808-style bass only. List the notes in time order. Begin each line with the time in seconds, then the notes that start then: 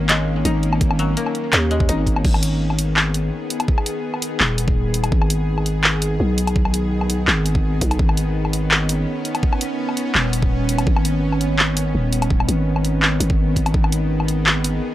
Already playing: G#1
0.45 G#1
1.53 D#2
1.89 G#1
2.25 G#1
4.40 D#1
5.12 G#1
6.20 B1
7.28 G#1
7.81 B1
7.99 G#1
10.15 D#1
10.87 G#1
11.95 D#1
12.48 G#1
13.20 G#1
13.74 G#1